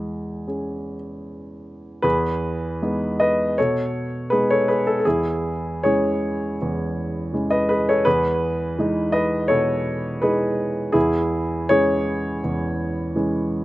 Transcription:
Already playing: E2 G#3 G#4
0.48 C#4 G#4
2.02 E2 G#4 B4
2.82 G#3 B3 D#4
3.20 B4 D#5
3.58 B2 A4 C#5
4.30 G#3 B3 D#4 G#4 B4
4.50 A4 C#5
4.68 G#4 B4
4.87 A4
5.00 A4
5.05 E2 E4 G#4
5.83 E3 G#3 C#4 G#4 C#5
6.62 E2
7.33 E3 G#3 C#4
7.50 B4 D#5
7.69 G#4 B4
7.89 A4 C#5
8.05 E2 G#4 B4
8.79 E3 G#3 D#4
9.12 B4 D#5
9.48 B2 A4 C#5
10.22 E3 G#3 D#4 G#4 B4
10.92 E2 E4 G#4
11.69 E3 G#3 C#4 G#4 C#5
12.44 E2
13.16 E3 G#3 C#4

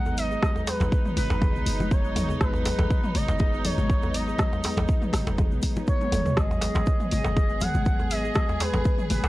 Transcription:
Already playing: G#1 F#3 B3 D#4 F#5
0.05 B3, djembe tone, shaker
0.17 D#5, open hi-hat, shaker
0.31 G#4, shaker
0.43 G#3, kick, cross-stick, high conga, shaker
0.56 djembe tone, shaker
0.67 G#4 B4, open hi-hat, djembe slap, shaker
0.80 G#1, djembe slap, djembe tone, low conga, shaker
0.92 D#3, kick, shaker
1.05 mid tom, shaker
1.17 G#1 D#3 B4, open hi-hat, high conga, shaker
1.30 F#1, djembe slap, shaker
1.42 G#4, kick, mid tom, djembe tone, low conga, shaker
1.55 B1 B3, shaker
1.66 F#1, open hi-hat, high conga, shaker
1.80 G#3, high conga, low conga, shaker
1.91 C#5, kick, shaker
2.05 B3, shaker
2.16 G#1, open hi-hat, mid tom, djembe tone, high conga, shaker
2.29 G#4, djembe tone, shaker
2.41 G#1 G#3 B4, kick, cross-stick, high conga, shaker
2.53 djembe tone, shaker
2.65 G#4, open hi-hat, djembe slap, shaker
2.78 G#1, djembe slap, djembe tone, low conga, shaker
2.90 D#3, kick, shaker
3.04 mid tom, shaker
3.15 G#1 D#3 D#5, open hi-hat, high conga, shaker
3.28 F#1, djembe slap, shaker
3.39 G#4, kick, high conga, shaker
3.53 B3, shaker
3.65 C#5, open hi-hat, mid tom, high conga, djembe tone, low conga, shaker
3.78 G#1 G#3, high conga, shaker
3.90 kick, shaker
4.02 B3, djembe tone, shaker
4.14 D#5, open hi-hat, shaker
4.28 G#4, shaker
4.38 G#3, kick, cross-stick, high conga, low conga, shaker
4.53 djembe tone, shaker
4.63 G#4, open hi-hat, djembe slap, shaker
4.77 G#1, djembe slap, djembe tone, low conga, shaker
4.88 D#3, kick, shaker
5.02 mid tom, shaker
5.13 G#1 D#3, cross-stick, open hi-hat, high conga, shaker
5.27 F#1, djembe slap, shaker
5.38 G#4, kick, mid tom, djembe tone, low conga, shaker
5.51 B1 B3, shaker
5.62 kick, open hi-hat, high conga, shaker
5.76 D#4, high conga, low conga, shaker
5.87 C#5, kick, shaker
6.01 G#3, high tom, high conga, shaker
6.12 F#1, open hi-hat, mid tom, djembe tone, high conga, shaker
6.25 G#3, mid tom, djembe tone, shaker
6.37 G#1 G#3 G#4 D#5, kick, cross-stick, high conga, shaker
6.51 djembe tone, shaker
6.61 G#4, open hi-hat, djembe slap, shaker
6.75 G#1, djembe slap, djembe tone, low conga, shaker
6.86 D#3, kick, shaker
7.00 mid tom, shaker
7.11 G#1 D#3 D#5, open hi-hat, high conga, shaker
7.24 F#1, djembe slap, shaker
7.37 G#4, kick, high conga, shaker
7.49 B3, shaker
7.60 F#5, open hi-hat, mid tom, djembe tone, high conga, low conga, shaker
7.74 G#1 G#3, high conga, shaker
7.85 kick, shaker
7.99 B3, djembe tone, shaker
8.11 D#5, open hi-hat, shaker
8.24 G#4, shaker
8.35 G#3, kick, cross-stick, high conga, shaker
8.49 djembe tone, shaker
8.60 G#4 B4, open hi-hat, djembe slap, shaker
8.73 G#1, djembe slap, djembe tone, low conga, shaker
8.85 D#3, kick, shaker
8.98 mid tom, shaker
9.10 G#1 D#3 B4, open hi-hat, high conga, shaker
9.24 F#1, djembe slap, shaker

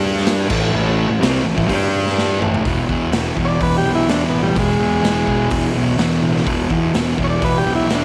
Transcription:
Already playing: G2 G3 D4 G4
0.17 snare
0.26 snare, open hi-hat
0.48 A1 A2 E3 A3, kick, crash
0.73 A1 A2 E3 A3
1.09 A1 A2 E3
1.21 C2 C3 G3 C4, snare, open hi-hat
1.35 snare
1.43 A1 A2 E3
1.55 A1 A2 E3, kick
1.67 G2 G3 D4 G4, kick, open hi-hat
2.06 snare
2.18 snare
2.40 A1 A2 E3 A3, mid tom
2.54 floor tom
2.62 E1 E2 B2, kick, open hi-hat
2.67 E3
2.88 E2 B2 E3, kick
3.11 E1 E2 B2, snare, open hi-hat
3.15 E3
3.35 E1 E3, kick
3.39 B2
3.45 C#5 D5
3.61 E1 B4, kick, open hi-hat
3.78 G4
3.83 B1 E3
3.88 B2
3.95 E4
4.05 E1 E2, open hi-hat
4.10 B2 E3 D4, snare
4.29 A1 B3
4.43 G3
4.56 E1 E2 B2 E3 G#3, kick, open hi-hat
4.79 E2 E3
4.84 B2
5.01 E1 E2 B2, open hi-hat
5.05 E3, snare
5.25 E1 B2 E3, kick
5.50 E1, kick, open hi-hat
5.72 B1 E3
5.77 B2
5.96 E1 E2 B2, snare, open hi-hat
6.00 E3
6.22 A1
6.36 snare
6.44 E1 E2 B2, kick, open hi-hat
6.48 E3
6.69 E2 B2 E3, kick
6.93 E1 E2 B2, snare, open hi-hat
6.97 E3
7.16 E1 B2 E3, kick
7.24 C#5
7.30 D5
7.42 E1 B4, kick, open hi-hat
7.58 G4
7.64 B1 B2 E3
7.76 E4
7.87 E1 E2 B2 E3, snare, open hi-hat
7.95 D4

